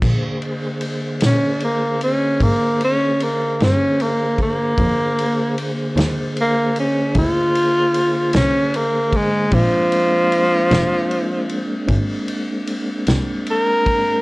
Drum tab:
CC |x-----------|------------|------------|
RD |-xxxxxxxxxxx|xxxxxxxxxxxx|xxxxxxxxxxxx|
SD |---o-----o--|---o-----o--|---o-----o--|
BD |o-----o----o|o-----o----o|o-----o----o|